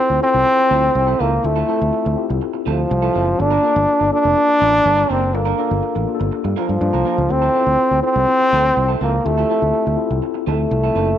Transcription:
Already playing: tine electric piano C4 E4 F4 A4, trombone C4
0.10 fingered electric bass D2, muted clean electric guitar stroke
0.20 tine electric piano C4 E4 F4 A4, trombone C4
0.34 fingered electric bass C2, muted clean electric guitar stroke
0.46 muted clean electric guitar stroke
0.59 muted clean electric guitar stroke
0.70 fingered electric bass D2, clean electric guitar F3 C4 E4 A4
0.83 muted clean electric guitar stroke
0.95 fingered electric bass C2, muted clean electric guitar stroke
1.07 clean electric guitar F3 C4 E4 A4
1.19 fingered electric bass C#2, clean electric guitar F3 C4 E4 A4, trombone A#3
1.31 muted clean electric guitar stroke
1.43 fingered electric bass D2, trombone A3, tine electric piano C4 E4 F4 A4, muted clean electric guitar stroke
1.56 clean electric guitar F3 C4 E4 A4
1.68 clean electric guitar F3 C4 E4 A4, tine electric piano C4 E4 F4 A4
1.80 fingered electric bass D2, muted clean electric guitar stroke
1.93 muted clean electric guitar stroke
2.05 fingered electric bass D2, muted clean electric guitar stroke
2.16 tine electric piano C4 E4 F4 G4
2.30 fingered electric bass C2, muted clean electric guitar stroke
2.41 muted clean electric guitar stroke
2.54 muted clean electric guitar stroke
2.66 fingered electric bass D2, clean electric guitar F3 C4 E4 A4, trombone F3
2.78 muted clean electric guitar stroke
2.90 fingered electric bass C2, muted clean electric guitar stroke
3.02 clean electric guitar F3 C4 E4 A4
3.14 fingered electric bass F#1, clean electric guitar F3 C4 E4 A4
3.27 muted clean electric guitar stroke
3.38 fingered electric bass G1, tine electric piano A#3 D4 F4 A4, trombone D4, muted clean electric guitar stroke
3.51 clean electric guitar A#3 D4 F4 A#4
3.62 tine electric piano A#3 D4 F4 A4, clean electric guitar A#3 D4 F4 A#4
3.75 fingered electric bass G1, muted clean electric guitar stroke
3.88 muted clean electric guitar stroke
4.00 fingered electric bass G1, muted clean electric guitar stroke
4.11 tine electric piano A#3 D4 F4 A4, trombone D4
4.24 fingered electric bass F1, muted clean electric guitar stroke
4.37 muted clean electric guitar stroke
4.49 muted clean electric guitar stroke
4.61 fingered electric bass A1, clean electric guitar A#3 D4 F4 A#4
4.73 muted clean electric guitar stroke
4.85 fingered electric bass G1, muted clean electric guitar stroke
4.97 clean electric guitar A#3 D4 F4 A#4
5.09 fingered electric bass F#1, clean electric guitar A#3 D4 F4 A#4, trombone C4
5.22 muted clean electric guitar stroke
5.33 fingered electric bass G1, tine electric piano A#3 D4 F4 A4, trombone A#3, muted clean electric guitar stroke
5.45 clean electric guitar A#3 D4 F4 A#4
5.57 clean electric guitar A#3 D4 F4 A#4, tine electric piano A#3 D4 F4 A4
5.70 fingered electric bass G1, muted clean electric guitar stroke
5.83 muted clean electric guitar stroke
5.95 fingered electric bass A1, muted clean electric guitar stroke
6.07 tine electric piano A#3 D4 F4 G4
6.15 tine electric piano A4
6.20 fingered electric bass G1, muted clean electric guitar stroke
6.32 muted clean electric guitar stroke
6.44 fingered electric bass G2, muted clean electric guitar stroke
6.56 trombone F3, clean electric guitar A#3 D4 F4 A#4
6.68 fingered electric bass G2, muted clean electric guitar stroke
6.81 fingered electric bass G2, muted clean electric guitar stroke
6.93 fingered electric bass C2, clean electric guitar A#3 D4 F4 A#4
7.05 clean electric guitar A#3 D4 F4 A#4
7.17 fingered electric bass C#2, muted clean electric guitar stroke
7.29 fingered electric bass D2, tine electric piano C4 E4 F4 A4, trombone C4, muted clean electric guitar stroke
7.42 clean electric guitar F3 C4 E4 A4
7.54 clean electric guitar F3 C4 E4 A4, tine electric piano C4 E4 F4 A4
7.67 fingered electric bass D2, muted clean electric guitar stroke
7.79 muted clean electric guitar stroke
7.91 fingered electric bass D2, muted clean electric guitar stroke
8.02 tine electric piano C4 E4 F4 A4, trombone C4
8.16 fingered electric bass C2, muted clean electric guitar stroke
8.28 muted clean electric guitar stroke
8.40 muted clean electric guitar stroke
8.52 fingered electric bass D2, clean electric guitar F3 C4 E4 A4
8.65 muted clean electric guitar stroke
8.77 fingered electric bass C2, muted clean electric guitar stroke
8.88 clean electric guitar F3 C4 E4 A4
9.01 fingered electric bass C#2, clean electric guitar F3 C4 E4 A4, trombone A#3
9.13 muted clean electric guitar stroke
9.24 fingered electric bass D2, trombone A3, tine electric piano C4 E4 F4 G4, muted clean electric guitar stroke
9.38 clean electric guitar F3 C4 E4 A4
9.49 clean electric guitar F3 C4 E4 A4, tine electric piano C4 E4 F4 A4
9.62 fingered electric bass D2, muted clean electric guitar stroke
9.74 muted clean electric guitar stroke
9.86 fingered electric bass D2, muted clean electric guitar stroke
9.97 tine electric piano C4 E4 F4 A4
10.10 fingered electric bass C2, muted clean electric guitar stroke
10.22 muted clean electric guitar stroke
10.34 muted clean electric guitar stroke
10.47 fingered electric bass D2, clean electric guitar F3 C4 E4 A4, trombone A3
10.59 muted clean electric guitar stroke
10.71 fingered electric bass C2, muted clean electric guitar stroke
10.84 clean electric guitar F3 C4 E4 A4
10.95 fingered electric bass F#1, clean electric guitar F3 C4 E4 A4
11.08 muted clean electric guitar stroke

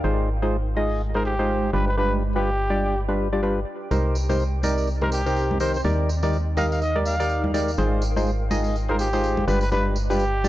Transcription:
Already playing: ambient pad D#4 A#4 F5 G5
0.04 fm bass G#1, ambient pad G#3, synth stab G#3 D#4 F4 G#4 C5
0.34 ambient pad C6
0.42 synth stab G#3 D#4 F4 G#4 C5
0.55 ambient pad D#5
0.77 synth stab G#3 D#4 F4 G#4 D#5
1.15 synth stab G#3 D#4 F4 G#4 C5, trumpet A#4
1.25 trumpet G4
1.39 synth stab G#3 D#4 F4 G#4 C5
1.73 fm bass G1, synth stab G3 D4 F4 G4 B4, ambient pad G4, trumpet B4
1.87 trumpet B4
1.98 synth stab G3 D4 F4 G4 B4, trumpet B4
2.08 ambient pad D5
2.24 ambient pad B5
2.36 synth stab G3 D4 F4 G4 B4, trumpet G4
2.70 synth stab G3 D4 F4 G4 D5, ambient pad G5
3.08 synth stab G3 D4 F4 G4 B4
3.33 synth stab G3 D4 F4 G4 D5
3.43 synth stab G3 D4 F4 G4 B4
3.91 fm bass C2, synth stab C3 D#4 G4 A#4 C5, ambient pad C4, tambourine, high conga
4.15 tambourine
4.29 synth stab C3 D#4 G4 A#4 C5, tambourine, high conga
4.39 tambourine
4.63 synth stab C3 D#4 G4 A#4 D5, tambourine, high conga
4.78 ambient pad D#5, tambourine
4.87 tambourine
5.01 synth stab C3 D#4 G4 A#4 C5, trumpet A#4, high conga
5.12 trumpet G4, tambourine
5.26 synth stab C3 D#4 G4 A#4 C5, tambourine
5.36 tambourine
5.51 high conga
5.60 synth stab D#3 D#4 G4 A#4 C5, trumpet C5, tambourine
5.74 trumpet C5, tambourine
5.84 fm bass D#2, synth stab D#3 D#4 G4 A#4 D5, ambient pad D#4, tambourine, high conga
6.08 ambient pad G5, tambourine
6.23 synth stab D#3 D#4 G4 A#4 D5, tambourine, high conga
6.31 ambient pad A#4 F5, tambourine
6.57 synth stab D#3 D#4 G4 A#4 D#5, trumpet F5, tambourine, high conga
6.71 trumpet F5, tambourine
6.81 trumpet D#5, tambourine
6.96 synth stab D#3 D#4 G4 A#4 D5, high conga
7.05 trumpet F5, tambourine
7.20 synth stab D#3 D#4 G4 A#4 D5, tambourine
7.29 tambourine
7.44 high conga
7.54 synth stab G#3 D#4 G4 A#4 D5, tambourine
7.68 tambourine
7.77 fm bass G#1, synth stab G#3 D#4 F4 G#4 C5, ambient pad G#3, tambourine, high conga
8.02 tambourine
8.16 synth stab G#3 D#4 F4 G#4 C5, tambourine, high conga
8.27 ambient pad D#5, tambourine
8.51 synth stab G#3 D#4 F4 G#4 D#5, tambourine, high conga
8.64 tambourine
8.76 tambourine
8.89 synth stab G#3 D#4 F4 G#4 C5, trumpet A#4, high conga
8.99 trumpet G4, tambourine
9.13 synth stab G#3 D#4 F4 G#4 C5, tambourine
9.23 tambourine
9.37 high conga
9.48 fm bass G1, synth stab G3 D4 F4 G4 B4, ambient pad G4, trumpet B4, tambourine
9.61 trumpet B4, tambourine
9.72 synth stab G3 D4 F4 G4 B4, trumpet B4, tambourine, high conga
9.81 ambient pad G5
9.96 tambourine
10.02 ambient pad D5
10.10 synth stab G3 D4 F4 G4 B4, trumpet G4, tambourine, high conga
10.19 tambourine
10.44 synth stab G3 D4 F4 G4 D5, tambourine, high conga

